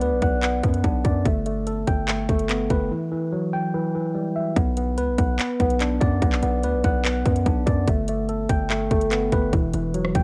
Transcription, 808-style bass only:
0.01 0.13 D2 loud
0.12 0.22 B1 loud
0.22 0.62 B1 loud
0.63 0.83 F#2 loud
0.84 1.04 B1 loud
1.05 1.25 F#2 loud
1.25 1.85 G1 loud
1.87 2.27 G1 loud
2.29 2.69 G1 loud
2.70 2.90 G1 loud
4.56 4.99 B1 loud
4.98 5.10 C#2 loud
5.08 5.18 B1 loud
5.18 5.38 B1 loud
5.60 6.00 B1 loud
6.01 6.21 F#2 loud
6.22 6.42 B1 loud
6.43 6.65 B1 loud
6.63 6.75 D2 loud
6.74 6.83 B1 loud
6.84 7.24 B1 loud
7.25 7.45 F#2 loud
7.46 7.66 B1 loud
7.67 7.87 F#2 loud
7.87 8.47 G1 loud
8.49 8.89 G1 loud
8.91 9.31 G1 loud
9.32 9.52 G1 loud
9.53 9.73 E1 loud
9.74 10.13 E1 loud
10.15 10.23 E1 loud

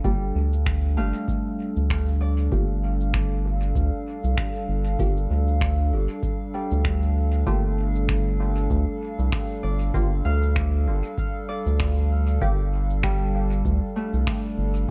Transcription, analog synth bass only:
0.04 0.32 G1 medium
0.35 0.99 D2 loud
0.97 1.13 G1 medium
1.77 2.49 D2 medium
2.52 3.73 G1 medium
3.75 3.91 D2 loud
4.24 4.36 C2 loud
4.68 4.96 G1 medium
4.99 5.27 G1 medium
5.30 5.94 D2 medium
5.92 6.08 G1 medium
6.72 7.44 D2 medium
7.47 8.68 G1 medium
8.70 8.86 D2 loud
9.19 9.31 C2 medium
9.64 9.91 G1 medium
9.94 10.22 G1 medium
10.25 10.89 D2 loud
10.87 11.02 G1 medium
11.66 12.39 D2 medium
12.41 13.63 G1 medium
13.65 13.81 D2 loud
14.14 14.25 C2 medium
14.58 14.86 G1 medium

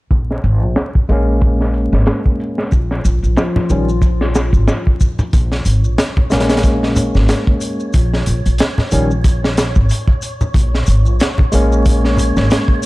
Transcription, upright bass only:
0.11 0.40 A#1 medium
0.44 0.62 G#1 medium
0.62 0.75 A#1 medium
1.09 1.89 A#1 medium
1.93 2.05 G#1 medium
2.72 3.01 A#1 medium
3.05 3.21 A#1 medium
3.23 3.36 A#1 medium
3.70 4.50 A#1 medium
4.53 4.66 G#1 medium
5.33 5.62 A#1 medium
5.66 5.84 G#1 medium
5.84 5.97 A#1 medium
6.31 7.11 A#1 medium
7.15 7.27 G#1 medium
7.94 8.23 A#1 medium
8.27 8.43 A#1 medium
8.46 8.58 A#1 medium
8.92 9.72 A#1 medium
9.76 9.88 G#1 medium
10.54 10.84 A#1 medium
10.88 11.06 G#1 medium
11.06 11.18 A#1 medium
11.53 12.33 A#1 medium
12.37 12.49 G#1 medium

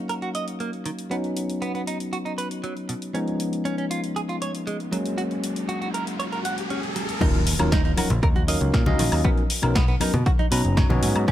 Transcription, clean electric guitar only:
0.09 0.13 A#4 medium
0.22 0.29 F#4 medium
0.35 0.45 D#5 medium
0.60 0.70 A#3 medium
0.86 0.89 D#3 medium
1.11 1.15 B3 medium
1.62 1.71 B3 medium
1.75 1.81 B3 medium
1.87 1.97 D#4 medium
2.13 2.17 F#4 medium
2.25 2.32 D#4 medium
2.38 2.48 B4 medium
2.64 2.73 F#3 medium
2.89 2.93 B2 medium
3.14 3.18 C#4 medium
3.65 3.75 C#4 medium
3.78 3.84 C#4 medium
3.91 4.00 F4 medium
4.16 4.20 G#4 medium
4.29 4.35 F4 medium
4.42 4.51 C#5 medium
4.67 4.77 G#3 medium
4.92 4.96 F#3 medium
5.18 5.22 F#4 medium
5.69 5.78 F#4 medium
5.82 5.88 F#4 medium
5.94 6.04 A#4 medium
6.20 6.23 C#5 medium
6.32 6.39 A#4 medium
6.45 6.55 F#5 medium
6.71 6.80 C#4 medium
6.96 7.00 F#3 medium
7.21 7.25 D#4 medium
7.72 7.82 D#4 medium
7.85 7.91 D#4 medium
7.98 8.07 F#4 medium
8.23 8.27 A#4 medium
8.36 8.42 F#4 medium
8.48 8.58 D#5 medium
8.74 8.83 A#3 medium
8.99 9.03 D#3 medium
9.25 9.29 B3 medium
9.75 9.85 B3 medium
9.88 9.95 B3 medium
10.01 10.11 D#4 medium
10.26 10.30 F#4 medium
10.39 10.46 D#4 medium
10.52 10.61 B4 medium
10.77 10.87 F#3 medium
11.03 11.06 B2 medium
11.28 11.32 C#4 medium

